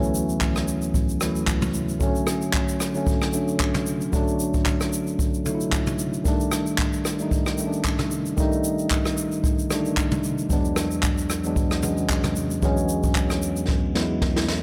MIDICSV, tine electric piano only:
0, 0, Header, 1, 2, 480
1, 0, Start_track
1, 0, Tempo, 530973
1, 1813, Time_signature, 4, 2, 24, 8
1, 13224, End_track
2, 0, Start_track
2, 0, Title_t, "Tine electric piano"
2, 0, Program_c, 0, 4
2, 0, Control_c, 0, 64, 127
2, 0, Note_on_c, 0, 38, 100
2, 0, Note_on_c, 0, 52, 98
2, 0, Note_on_c, 0, 54, 95
2, 0, Note_on_c, 0, 57, 101
2, 0, Note_on_c, 0, 59, 87
2, 0, Note_on_c, 0, 61, 116
2, 660, Note_off_c, 0, 38, 0
2, 665, Note_off_c, 0, 52, 0
2, 669, Note_off_c, 0, 54, 0
2, 673, Note_off_c, 0, 57, 0
2, 678, Note_off_c, 0, 61, 0
2, 1081, Note_on_c, 0, 38, 83
2, 1090, Note_on_c, 0, 52, 78
2, 1098, Note_on_c, 0, 54, 74
2, 1107, Note_on_c, 0, 57, 78
2, 1116, Note_on_c, 0, 64, 94
2, 1673, Note_off_c, 0, 38, 0
2, 1677, Note_off_c, 0, 52, 0
2, 1681, Note_off_c, 0, 54, 0
2, 1686, Note_off_c, 0, 57, 0
2, 1690, Note_off_c, 0, 64, 0
2, 1800, Note_on_c, 0, 50, 100
2, 1812, Note_on_c, 0, 54, 95
2, 1823, Control_c, 0, 64, 0
2, 1824, Note_on_c, 0, 57, 96
2, 1831, Note_off_c, 0, 59, 0
2, 1836, Note_on_c, 0, 61, 116
2, 1979, Control_c, 0, 64, 127
2, 2484, Note_off_c, 0, 50, 0
2, 2490, Note_off_c, 0, 54, 0
2, 2495, Note_off_c, 0, 57, 0
2, 2501, Note_off_c, 0, 61, 0
2, 2655, Note_on_c, 0, 50, 86
2, 2666, Note_on_c, 0, 54, 77
2, 2678, Note_on_c, 0, 57, 77
2, 2690, Note_on_c, 0, 61, 89
2, 2943, Note_off_c, 0, 50, 0
2, 2949, Note_off_c, 0, 54, 0
2, 2955, Note_off_c, 0, 57, 0
2, 2961, Note_off_c, 0, 61, 0
2, 3002, Note_on_c, 0, 50, 81
2, 3014, Note_on_c, 0, 54, 74
2, 3025, Note_on_c, 0, 57, 74
2, 3038, Note_on_c, 0, 62, 93
2, 3593, Note_off_c, 0, 50, 0
2, 3599, Note_off_c, 0, 54, 0
2, 3605, Note_off_c, 0, 57, 0
2, 3611, Note_off_c, 0, 62, 0
2, 3722, Note_on_c, 0, 50, 103
2, 3734, Note_on_c, 0, 54, 96
2, 3745, Note_on_c, 0, 57, 98
2, 3757, Note_on_c, 0, 62, 115
2, 4501, Note_off_c, 0, 50, 0
2, 4506, Note_off_c, 0, 54, 0
2, 4512, Note_off_c, 0, 57, 0
2, 4518, Note_off_c, 0, 62, 0
2, 4922, Note_on_c, 0, 50, 84
2, 4933, Note_on_c, 0, 54, 76
2, 4945, Note_on_c, 0, 57, 77
2, 4956, Note_on_c, 0, 63, 72
2, 5008, Note_off_c, 0, 63, 0
2, 5014, Note_on_c, 0, 64, 92
2, 5513, Note_off_c, 0, 50, 0
2, 5519, Note_off_c, 0, 54, 0
2, 5524, Note_off_c, 0, 57, 0
2, 5559, Note_off_c, 0, 64, 0
2, 5641, Note_on_c, 0, 51, 107
2, 5653, Note_on_c, 0, 55, 98
2, 5664, Control_c, 0, 64, 0
2, 5665, Note_on_c, 0, 57, 94
2, 5677, Note_on_c, 0, 62, 119
2, 5807, Control_c, 0, 64, 127
2, 6324, Note_off_c, 0, 51, 0
2, 6330, Note_off_c, 0, 55, 0
2, 6336, Note_off_c, 0, 57, 0
2, 6342, Note_off_c, 0, 62, 0
2, 6493, Note_on_c, 0, 51, 82
2, 6505, Note_on_c, 0, 55, 78
2, 6516, Note_on_c, 0, 57, 76
2, 6528, Note_on_c, 0, 63, 94
2, 6782, Note_off_c, 0, 51, 0
2, 6788, Note_off_c, 0, 55, 0
2, 6794, Note_off_c, 0, 57, 0
2, 6800, Note_off_c, 0, 63, 0
2, 6842, Note_on_c, 0, 51, 85
2, 6854, Note_on_c, 0, 55, 76
2, 6866, Note_on_c, 0, 57, 75
2, 6877, Note_on_c, 0, 61, 69
2, 6929, Note_off_c, 0, 61, 0
2, 6935, Note_on_c, 0, 62, 91
2, 7433, Note_off_c, 0, 51, 0
2, 7439, Note_off_c, 0, 55, 0
2, 7445, Note_off_c, 0, 57, 0
2, 7480, Note_off_c, 0, 62, 0
2, 7561, Note_on_c, 0, 51, 105
2, 7573, Note_on_c, 0, 55, 100
2, 7584, Note_on_c, 0, 57, 97
2, 7596, Note_on_c, 0, 63, 113
2, 8340, Note_off_c, 0, 51, 0
2, 8346, Note_off_c, 0, 55, 0
2, 8352, Note_off_c, 0, 57, 0
2, 8357, Note_off_c, 0, 63, 0
2, 8763, Note_on_c, 0, 50, 66
2, 8774, Note_on_c, 0, 55, 75
2, 8786, Note_on_c, 0, 57, 79
2, 8798, Note_on_c, 0, 62, 93
2, 8820, Note_on_c, 0, 51, 82
2, 8831, Note_off_c, 0, 50, 0
2, 9359, Note_off_c, 0, 55, 0
2, 9365, Note_off_c, 0, 57, 0
2, 9371, Note_off_c, 0, 62, 0
2, 9382, Note_off_c, 0, 51, 0
2, 9481, Note_on_c, 0, 40, 105
2, 9490, Note_on_c, 0, 54, 95
2, 9499, Note_on_c, 0, 56, 93
2, 9505, Control_c, 0, 64, 0
2, 9508, Note_on_c, 0, 59, 96
2, 9516, Note_on_c, 0, 62, 111
2, 9674, Control_c, 0, 64, 127
2, 10164, Note_off_c, 0, 40, 0
2, 10168, Note_off_c, 0, 54, 0
2, 10173, Note_off_c, 0, 56, 0
2, 10177, Note_off_c, 0, 59, 0
2, 10181, Note_off_c, 0, 62, 0
2, 10334, Note_on_c, 0, 40, 82
2, 10343, Note_on_c, 0, 54, 76
2, 10352, Note_on_c, 0, 56, 80
2, 10360, Note_on_c, 0, 59, 79
2, 10369, Note_on_c, 0, 62, 90
2, 10623, Note_off_c, 0, 40, 0
2, 10627, Note_off_c, 0, 54, 0
2, 10632, Note_off_c, 0, 56, 0
2, 10636, Note_off_c, 0, 59, 0
2, 10641, Note_off_c, 0, 62, 0
2, 10682, Note_on_c, 0, 40, 83
2, 10691, Note_on_c, 0, 54, 77
2, 10699, Note_on_c, 0, 56, 78
2, 10708, Note_on_c, 0, 59, 79
2, 10716, Note_on_c, 0, 61, 91
2, 11273, Note_off_c, 0, 40, 0
2, 11278, Note_off_c, 0, 54, 0
2, 11282, Note_off_c, 0, 56, 0
2, 11286, Note_off_c, 0, 59, 0
2, 11290, Note_off_c, 0, 61, 0
2, 11401, Note_on_c, 0, 40, 104
2, 11410, Note_on_c, 0, 54, 97
2, 11418, Note_on_c, 0, 56, 98
2, 11428, Note_on_c, 0, 59, 96
2, 11436, Note_on_c, 0, 61, 121
2, 12180, Note_off_c, 0, 40, 0
2, 12184, Note_off_c, 0, 54, 0
2, 12189, Note_off_c, 0, 56, 0
2, 12193, Note_off_c, 0, 59, 0
2, 12197, Note_off_c, 0, 61, 0
2, 12601, Note_on_c, 0, 40, 83
2, 12609, Note_on_c, 0, 54, 75
2, 12618, Note_on_c, 0, 56, 75
2, 12627, Note_on_c, 0, 59, 76
2, 12635, Note_on_c, 0, 64, 93
2, 13193, Note_off_c, 0, 40, 0
2, 13197, Note_off_c, 0, 54, 0
2, 13201, Note_off_c, 0, 56, 0
2, 13206, Note_off_c, 0, 59, 0
2, 13210, Note_off_c, 0, 64, 0
2, 13224, End_track
0, 0, End_of_file